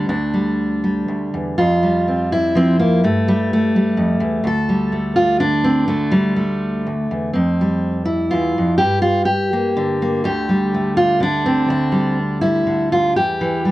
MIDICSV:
0, 0, Header, 1, 2, 480
1, 0, Start_track
1, 0, Key_signature, -1, "minor"
1, 0, Tempo, 490998
1, 87, Time_signature, 3, 2, 24, 8
1, 2490, Tempo, 475059
1, 4890, Tempo, 487409
1, 7770, Tempo, 478469
1, 11610, Tempo, 493827
1, 13592, End_track
2, 0, Start_track
2, 0, Title_t, "Steel-string acoustic guitar"
2, 0, Program_c, 0, 25
2, 0, Note_on_c, 0, 50, 51
2, 83, Note_on_c, 0, 38, 60
2, 86, Note_on_c, 0, 62, 59
2, 326, Note_on_c, 0, 55, 39
2, 800, Note_off_c, 0, 55, 0
2, 817, Note_on_c, 0, 55, 38
2, 1044, Note_off_c, 0, 38, 0
2, 1057, Note_on_c, 0, 38, 47
2, 1299, Note_off_c, 0, 38, 0
2, 1307, Note_on_c, 0, 40, 48
2, 1533, Note_off_c, 0, 62, 0
2, 1535, Note_off_c, 0, 50, 0
2, 1542, Note_off_c, 0, 40, 0
2, 1543, Note_on_c, 0, 65, 77
2, 1553, Note_on_c, 0, 41, 62
2, 1776, Note_off_c, 0, 55, 0
2, 1788, Note_on_c, 0, 55, 38
2, 2033, Note_on_c, 0, 60, 40
2, 2257, Note_off_c, 0, 65, 0
2, 2272, Note_on_c, 0, 64, 78
2, 2497, Note_on_c, 0, 53, 57
2, 2499, Note_off_c, 0, 60, 0
2, 2511, Note_on_c, 0, 60, 83
2, 2737, Note_off_c, 0, 60, 0
2, 2741, Note_on_c, 0, 58, 76
2, 2950, Note_off_c, 0, 53, 0
2, 2955, Note_off_c, 0, 41, 0
2, 2979, Note_off_c, 0, 58, 0
2, 2984, Note_on_c, 0, 43, 69
2, 2985, Note_off_c, 0, 64, 0
2, 2990, Note_on_c, 0, 57, 75
2, 3221, Note_off_c, 0, 55, 0
2, 3233, Note_on_c, 0, 55, 71
2, 3465, Note_off_c, 0, 57, 0
2, 3485, Note_on_c, 0, 57, 75
2, 3704, Note_off_c, 0, 55, 0
2, 3716, Note_on_c, 0, 55, 44
2, 3926, Note_off_c, 0, 43, 0
2, 3930, Note_on_c, 0, 41, 60
2, 4161, Note_off_c, 0, 41, 0
2, 4165, Note_on_c, 0, 40, 66
2, 4398, Note_off_c, 0, 40, 0
2, 4402, Note_on_c, 0, 38, 71
2, 4419, Note_off_c, 0, 55, 0
2, 4423, Note_off_c, 0, 57, 0
2, 4435, Note_on_c, 0, 69, 91
2, 4655, Note_on_c, 0, 55, 44
2, 4890, Note_on_c, 0, 57, 43
2, 5118, Note_off_c, 0, 69, 0
2, 5122, Note_on_c, 0, 65, 85
2, 5358, Note_off_c, 0, 65, 0
2, 5359, Note_on_c, 0, 50, 54
2, 5362, Note_on_c, 0, 62, 88
2, 5595, Note_off_c, 0, 57, 0
2, 5599, Note_on_c, 0, 60, 77
2, 5827, Note_off_c, 0, 60, 0
2, 5830, Note_off_c, 0, 38, 0
2, 5831, Note_on_c, 0, 57, 72
2, 5842, Note_on_c, 0, 38, 65
2, 5846, Note_off_c, 0, 55, 0
2, 6065, Note_on_c, 0, 55, 68
2, 6082, Note_off_c, 0, 62, 0
2, 6295, Note_off_c, 0, 57, 0
2, 6307, Note_on_c, 0, 57, 64
2, 6792, Note_off_c, 0, 38, 0
2, 6793, Note_off_c, 0, 55, 0
2, 6804, Note_on_c, 0, 38, 51
2, 7040, Note_off_c, 0, 38, 0
2, 7044, Note_on_c, 0, 40, 50
2, 7261, Note_off_c, 0, 57, 0
2, 7265, Note_on_c, 0, 60, 62
2, 7279, Note_off_c, 0, 40, 0
2, 7283, Note_on_c, 0, 41, 60
2, 7286, Note_off_c, 0, 50, 0
2, 7537, Note_on_c, 0, 55, 38
2, 7976, Note_off_c, 0, 60, 0
2, 7980, Note_on_c, 0, 64, 73
2, 8233, Note_on_c, 0, 65, 83
2, 8249, Note_off_c, 0, 41, 0
2, 8253, Note_on_c, 0, 40, 54
2, 8492, Note_off_c, 0, 40, 0
2, 8506, Note_on_c, 0, 41, 55
2, 8699, Note_off_c, 0, 65, 0
2, 8703, Note_on_c, 0, 67, 91
2, 8716, Note_off_c, 0, 64, 0
2, 8729, Note_off_c, 0, 41, 0
2, 8733, Note_on_c, 0, 43, 67
2, 8940, Note_off_c, 0, 67, 0
2, 8944, Note_on_c, 0, 65, 80
2, 9176, Note_off_c, 0, 65, 0
2, 9180, Note_on_c, 0, 67, 85
2, 9452, Note_off_c, 0, 55, 0
2, 9457, Note_on_c, 0, 58, 45
2, 9695, Note_on_c, 0, 50, 62
2, 9934, Note_off_c, 0, 58, 0
2, 9951, Note_on_c, 0, 58, 47
2, 10141, Note_off_c, 0, 43, 0
2, 10151, Note_off_c, 0, 58, 0
2, 10153, Note_off_c, 0, 67, 0
2, 10171, Note_on_c, 0, 38, 71
2, 10182, Note_on_c, 0, 67, 93
2, 10422, Note_on_c, 0, 55, 44
2, 10676, Note_on_c, 0, 57, 45
2, 10894, Note_off_c, 0, 67, 0
2, 10902, Note_on_c, 0, 65, 91
2, 11124, Note_off_c, 0, 50, 0
2, 11135, Note_off_c, 0, 65, 0
2, 11136, Note_on_c, 0, 50, 62
2, 11161, Note_on_c, 0, 62, 91
2, 11383, Note_off_c, 0, 57, 0
2, 11394, Note_on_c, 0, 60, 74
2, 11611, Note_off_c, 0, 38, 0
2, 11617, Note_off_c, 0, 55, 0
2, 11621, Note_on_c, 0, 38, 66
2, 11627, Note_off_c, 0, 62, 0
2, 11637, Note_on_c, 0, 62, 71
2, 11850, Note_on_c, 0, 55, 44
2, 12097, Note_off_c, 0, 60, 0
2, 12323, Note_off_c, 0, 62, 0
2, 12325, Note_off_c, 0, 55, 0
2, 12327, Note_on_c, 0, 64, 79
2, 12337, Note_on_c, 0, 55, 38
2, 12564, Note_off_c, 0, 50, 0
2, 12575, Note_on_c, 0, 50, 55
2, 12816, Note_off_c, 0, 64, 0
2, 12823, Note_on_c, 0, 65, 80
2, 13053, Note_off_c, 0, 65, 0
2, 13054, Note_off_c, 0, 38, 0
2, 13055, Note_off_c, 0, 50, 0
2, 13057, Note_on_c, 0, 67, 80
2, 13058, Note_on_c, 0, 40, 62
2, 13296, Note_on_c, 0, 52, 56
2, 13521, Note_off_c, 0, 55, 0
2, 13532, Note_on_c, 0, 55, 41
2, 13592, Note_off_c, 0, 40, 0
2, 13592, Note_off_c, 0, 52, 0
2, 13592, Note_off_c, 0, 55, 0
2, 13592, Note_off_c, 0, 67, 0
2, 13592, End_track
0, 0, End_of_file